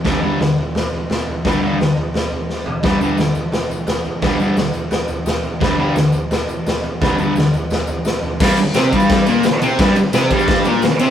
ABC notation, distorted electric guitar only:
X:1
M:4/4
L:1/8
Q:1/4=173
K:Clyd
V:1 name="Distorted electric guitar" clef=bass
[G,,D,G,] [G,,D,G,] z6 | [G,,D,G,] [G,,D,G,] z6 | [G,,D,G,] [G,,D,G,] z6 | [G,,D,G,] [G,,D,G,] z6 |
[G,,D,G,] [G,,D,G,] z6 | [G,,D,G,] [G,,D,G,] z6 | [G,,G,] z [C,C] [G,,G,]2 [_B,,_B,] z [C,C] | [G,,G,] z [C,C] [G,,G,]2 [_B,,_B,] z [C,C] |]